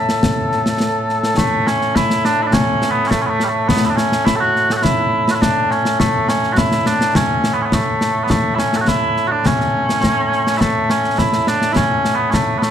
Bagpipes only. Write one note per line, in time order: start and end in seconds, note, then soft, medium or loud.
0.00 12.71 A2 medium
0.00 1.37 A3 medium
0.00 1.37 A4 medium
1.37 1.67 A3 loud
1.67 1.96 C#4 loud
1.96 2.25 E4 medium
2.25 2.42 D4 loud
2.42 2.46 E4 medium
2.46 2.53 D4 medium
2.53 2.90 C#4 loud
2.90 3.07 B3 loud
3.07 3.21 A3 loud
3.07 3.10 C#4 loud
3.21 3.26 C#4 medium
3.26 3.44 A3 loud
3.26 3.29 B3 medium
3.44 3.49 G3 medium
3.49 3.68 A3 medium
3.68 3.85 B3 medium
3.86 3.90 E4 medium
3.90 3.96 D4 medium
3.96 4.25 C#4 loud
4.25 4.36 E4 medium
4.36 4.40 A4 loud
4.40 4.72 F#4 loud
4.72 4.76 A4 medium
4.76 4.83 F#4 medium
4.83 5.31 E4 loud
5.31 5.41 E4 medium
5.31 5.35 F#4 medium
5.41 5.71 D4 medium
5.71 5.99 C#4 medium
5.99 6.29 A3 medium
6.29 6.53 C#4 loud
6.53 6.58 F#4 medium
6.58 6.86 E4 medium
6.86 7.16 D4 loud
7.16 7.53 C#4 medium
7.53 7.61 B3 medium
7.61 7.73 B3 medium
7.61 7.65 C#4 medium
7.73 8.23 A3 medium
8.23 8.30 B3 medium
8.30 8.55 A3 medium
8.55 8.77 C#4 medium
8.55 8.59 E4 medium
8.77 8.81 A4 medium
8.81 8.88 F#4 medium
8.88 9.27 E4 loud
9.27 9.46 D4 medium
9.27 9.31 F#4 medium
9.46 10.57 C#4 loud
10.57 10.90 A3 medium
10.57 10.61 E4 medium
10.90 11.18 C#4 loud
11.18 11.48 E4 medium
11.48 11.72 D4 loud
11.72 11.76 E4 loud
11.76 12.15 C#4 loud
12.15 12.30 B3 medium
12.30 12.58 A3 medium
12.30 12.34 C#4 medium
12.58 12.63 B3 medium
12.63 12.71 A3 medium